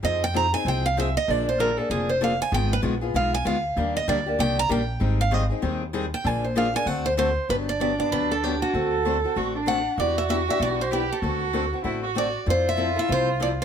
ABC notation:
X:1
M:4/4
L:1/8
Q:"Swing" 1/4=193
K:Ablyd
V:1 name="Steel-string acoustic guitar"
e g b a g f _f e | d c B =A _A c f a | g _c z2 f a f2- | f e d z g b g2- |
g f e z4 g | a c f a ^f c c2 | [K:G] B d d d B A G F- | F2 z4 f2 |
d e e e d c B A- | A2 z4 d2 | c e2 e c z d z |]
V:2 name="Violin"
z8 | z8 | z8 | z8 |
z8 | z8 | [K:G] D8 | A4 F D3 |
F6 G2 | F4 E F2 z | =F8 |]
V:3 name="Steel-string acoustic guitar"
[F,CEA] z [F,CEA] [CEA] [F,CEA] z [F,CEA] z | [D,F,B,DA] z [D,F,B,DA] [B,DA] [D,F,B,DA] z [D,F,B,DA] z | [E,A,_CFA] z [E,A,CFA] [CFA] [E,A,CFA] z [E,A,CFA] z | [E,G,B,DG] z [E,G,B,DG] [B,DG] [E,G,B,DG] z [E,G,B,DG] z |
[E,G,CEA] z [E,G,CEA] [CEA] [E,G,CEA] z [E,G,CEA] z | [D,F,B,DA] z [D,F,B,DA] [B,DA] [D,=A,C^F=A] z [D,A,CFA] z | [K:G] [D,F,B,DG] z [D,F,B,DG] [B,DG] [D,F,B,DG] z [D,F,B,DG] z | [D,A,CFA] z [D,A,CFA] [CFA] [D,A,CFA] z [D,A,CFA] z |
[E,B,DG] z [E,B,DG] [B,DG] [E,B,DG] z [E,B,DG] z | [D,A,CFA] z [D,A,CFA] [CFA] [D,A,CFA] z [D,A,CFA] z | [=F,CEA] z [F,CEA] [CEA] [F,CEA] z [F,CEA] z |]
V:4 name="Upright bass" clef=bass
F,,4 C,,4 | B,,,4 F,,,4 | A,,,2 B,,,2 _C,,2 D,,2 | E,,2 D,,2 C,,2 B,,,2 |
A,,,4 E,,4 | B,,,4 D,,4 | [K:G] G,,,4 D,,4 | D,,4 A,,,4 |
E,,4 B,,,4 | D,,4 A,,,4 | =F,,4 C,,4 |]